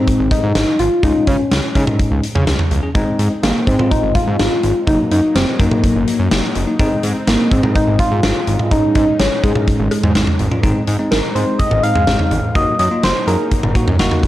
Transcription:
Already playing: tine electric piano G#3 C4 D#4, soft synth lead C4
0.07 kick, closed hi-hat
0.19 analog synth bass G#1
0.31 soft synth lead D#4, kick, closed hi-hat
0.43 analog synth bass G#2
0.55 analog synth bass G#1, snare, closed hi-hat
0.79 analog synth bass G#1, soft synth lead F4, closed hi-hat
1.03 analog synth bass C#2, tine electric piano G#3 C#4 F4, soft synth lead D#4, kick, closed hi-hat
1.27 analog synth bass C#3, soft synth lead C#4, kick, closed hi-hat
1.51 analog synth bass C#2, snare, closed hi-hat
1.75 analog synth bass C#3, tine electric piano G#3 C#4 D#4, kick, closed hi-hat
1.87 mid tom
1.99 kick, closed hi-hat
2.11 analog synth bass C#2
2.23 closed hi-hat
2.35 analog synth bass C#3, mid tom
2.47 analog synth bass C#2, snare, closed hi-hat
2.59 mid tom
2.71 analog synth bass C#2, closed hi-hat
2.83 tine electric piano C#4 G#4
2.95 analog synth bass G#1, tine electric piano G#3 C4 D#4, analog synth pad G#3 C4 D#4, kick, closed hi-hat
3.19 analog synth bass G#2, closed hi-hat
3.43 analog synth bass G#1, soft synth lead A#3, snare, closed hi-hat
3.67 analog synth bass G#2, soft synth lead C4, tine electric piano C4 D#4, kick, closed hi-hat
3.79 tine electric piano G#3 C4 F4, mid tom
3.91 soft synth lead D#4, kick, closed hi-hat
4.03 analog synth bass G#1
4.15 soft synth lead F4, kick, closed hi-hat
4.27 analog synth bass G#2
4.39 analog synth bass G#1, snare, closed hi-hat
4.63 analog synth bass G#1, closed hi-hat
4.87 analog synth bass F#1, tine electric piano F#3 A#3 D#4, analog synth pad F#3 A#3, soft synth lead D#4, kick, closed hi-hat
5.11 analog synth bass F#2, soft synth lead D#4, closed hi-hat
5.35 analog synth bass F#1, soft synth lead C4, snare, closed hi-hat
5.59 analog synth bass F#2, tine electric piano F#3 A#3 D#4, soft synth lead A#3, kick, closed hi-hat
5.71 mid tom
5.83 kick, closed hi-hat
5.95 analog synth bass F#1
6.07 closed hi-hat
6.19 analog synth bass F#2
6.31 analog synth bass F#1, snare, closed hi-hat
6.55 analog synth bass F#1, closed hi-hat
6.67 tine electric piano A#3 D#4
6.79 analog synth bass G#1, tine electric piano G#3 C4 D#4, analog synth pad G#3 C4, kick, closed hi-hat
7.03 analog synth bass G#2, closed hi-hat
7.27 analog synth bass G#1, soft synth lead A#3, snare, closed hi-hat
7.51 analog synth bass G#2, tine electric piano C4 D#4, soft synth lead C4, kick, closed hi-hat
7.63 tine electric piano G#3 C4 D#4, mid tom
7.75 soft synth lead D#4, kick, closed hi-hat
7.88 analog synth bass G#1
7.99 soft synth lead F4, kick, closed hi-hat
8.11 analog synth bass G#2
8.23 analog synth bass G#1, snare, closed hi-hat
8.47 analog synth bass G#1, closed hi-hat
8.59 mid tom
8.71 analog synth bass G#1, tine electric piano G#3 C#4 D#4, analog synth pad C#4 D#4, soft synth lead D#4, kick, closed hi-hat
8.95 analog synth bass G#2, soft synth lead D#4, kick, closed hi-hat
9.19 analog synth bass G#1, soft synth lead C#4, snare, closed hi-hat
9.43 analog synth bass G#2, soft synth lead G#3, tine electric piano G#3 C#4 D#4, kick, closed hi-hat
9.55 mid tom
9.67 kick, closed hi-hat
9.79 analog synth bass G#1
9.91 closed hi-hat, cowbell
10.03 analog synth bass G#2, mid tom
10.15 analog synth bass G#1, snare, closed hi-hat
10.27 mid tom
10.39 analog synth bass G#1, closed hi-hat
10.51 tine electric piano C#4 F4, mid tom
10.63 analog synth bass G#1, tine electric piano G#3 C4 D#4, analog synth pad G#3 C4 D#4, kick, closed hi-hat
10.87 analog synth bass G#2, closed hi-hat
10.99 tine electric piano G#3 C4 D#4
11.11 analog synth bass G#1, soft synth lead A#4, snare, closed hi-hat
11.35 analog synth bass G#2, tine electric piano G#3 C4 D#4, soft synth lead C5, closed hi-hat
11.59 soft synth lead D#5, kick, closed hi-hat
11.71 analog synth bass G#1, mid tom
11.83 tine electric piano G#3 C4 D#4, soft synth lead F5, closed hi-hat
11.95 analog synth bass G#2, mid tom
12.07 analog synth bass G#1, tine electric piano G#3 C4 D#4, snare, closed hi-hat
12.19 mid tom
12.31 analog synth bass G#1, closed hi-hat, mid tom
12.55 analog synth bass F#1, analog synth pad F#3 A#3, tine electric piano A#3 D#4 F#4, soft synth lead D#5, kick, closed hi-hat
12.79 analog synth bass F#2, soft synth lead D#5, closed hi-hat
12.91 tine electric piano A#3 D#4 F4
13.03 analog synth bass F#1, soft synth lead C5, snare, closed hi-hat
13.27 analog synth bass F#2, tine electric piano A#3 D#4 G#4, soft synth lead A#4, closed hi-hat
13.51 kick, closed hi-hat
13.63 analog synth bass F#1, mid tom
13.75 tine electric piano A#3 D#4 F#4, kick, closed hi-hat
13.87 analog synth bass F#2, mid tom
13.99 analog synth bass F#1, tine electric piano A#3 D#4 F#4, snare, closed hi-hat
14.11 mid tom
14.23 analog synth bass F#1, kick, closed hi-hat

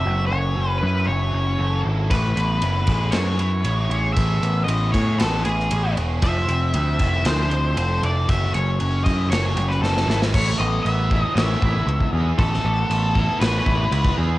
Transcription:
Already playing: distorted electric guitar A4
0.00 lead electric guitar E5
0.05 picked electric bass F#1, distorted electric guitar F#3
0.26 distorted electric guitar C#4, lead electric guitar C#5
0.31 picked electric bass F#1
0.56 picked electric bass F#1, distorted electric guitar C#4
0.70 lead electric guitar B4
0.78 distorted electric guitar E4, lead electric guitar B4
0.83 picked electric bass F#2
1.06 picked electric bass F#1, distorted electric guitar F#3, lead electric guitar C#5
1.33 picked electric bass F#1, distorted electric guitar C#4
1.59 picked electric bass F#1, distorted electric guitar A4
1.85 picked electric bass G#1, distorted electric guitar E4
2.10 picked electric bass A1, distorted electric guitar A3, lead electric guitar B4, kick, ride
2.36 picked electric bass A1, distorted electric guitar B3, ride
2.62 picked electric bass F#1, distorted electric guitar E4, ride
2.87 picked electric bass A1, distorted electric guitar G#4, kick, ride
3.11 picked electric bass F#2, distorted electric guitar B3, lead electric guitar C#5, snare, ride
3.39 distorted electric guitar E4, ride
3.64 picked electric bass A1, distorted electric guitar C#5, ride
3.90 picked electric bass A1, distorted electric guitar G#4, ride
4.13 distorted electric guitar A3, lead electric guitar E5, kick, ride
4.17 picked electric bass A1
4.42 picked electric bass A1, distorted electric guitar B3, ride
4.64 picked electric bass A1, distorted electric guitar E4, lead electric guitar D#5
4.68 ride
4.92 picked electric bass A2, distorted electric guitar G#4, lead electric guitar C#5, kick, ride
5.19 picked electric bass A1, distorted electric guitar B3, lead electric guitar A4, snare, ride
5.45 picked electric bass A1, distorted electric guitar E4, lead electric guitar G#4, ride
5.60 snare
5.71 picked electric bass A1, distorted electric guitar C#5, ride
5.97 picked electric bass E1, distorted electric guitar G#4, ride
6.22 picked electric bass F1, distorted electric guitar F3, lead electric guitar E5, kick, ride
6.49 picked electric bass F1, distorted electric guitar C4, ride
6.74 picked electric bass D2, distorted electric guitar C4, ride
6.99 picked electric bass F1, distorted electric guitar E4, kick, ride
7.25 picked electric bass D2, distorted electric guitar F3, lead electric guitar C5, snare, ride
7.51 distorted electric guitar C4, ride
7.77 picked electric bass F1, distorted electric guitar A4, lead electric guitar C5, ride
8.03 picked electric bass F1, distorted electric guitar E4, lead electric guitar D5, ride
8.28 picked electric bass F#1, distorted electric guitar F#3, lead electric guitar E5, kick, ride
8.54 picked electric bass F#1, distorted electric guitar C#4, lead electric guitar C#5, ride
8.79 picked electric bass F#1, distorted electric guitar C#4, ride
9.04 picked electric bass F#2, distorted electric guitar E4, lead electric guitar D#5, kick, ride
9.30 picked electric bass F#1, distorted electric guitar F#3, lead electric guitar C#5, snare, ride
9.56 picked electric bass F#1, distorted electric guitar C#4, ride
9.68 lead electric guitar B4, snare
9.82 picked electric bass F#1, lead electric guitar A4, distorted electric guitar A4, snare
9.97 snare
10.07 picked electric bass G#1, distorted electric guitar E4, snare
10.22 snare
10.34 picked electric bass A1, distorted electric guitar A3, lead electric guitar C#5, kick, crash
10.59 picked electric bass A1, distorted electric guitar B3, lead electric guitar D#5
10.83 picked electric bass A1, distorted electric guitar B3, lead electric guitar E5, crash
11.11 distorted electric guitar E4, kick
11.23 lead electric guitar D#5
11.35 picked electric bass A1, distorted electric guitar C#5, lead electric guitar E5, snare, crash
11.62 picked electric bass A1, distorted electric guitar E4, kick
11.87 picked electric bass C#2, distorted electric guitar B3, crash
12.01 kick
12.13 picked electric bass E2, distorted electric guitar G#4
12.38 picked electric bass A1, distorted electric guitar A3, lead electric guitar A4, kick, crash
12.54 snare
12.65 picked electric bass A1, distorted electric guitar B3
12.90 picked electric bass A1, distorted electric guitar B3, crash
13.15 distorted electric guitar E4, kick
13.40 picked electric bass A1, lead electric guitar B4, distorted electric guitar C#5, snare, crash
13.66 picked electric bass A1, distorted electric guitar E4, kick
13.91 picked electric bass C#2, distorted electric guitar B3, crash
14.04 kick
14.17 picked electric bass E2, distorted electric guitar G#4

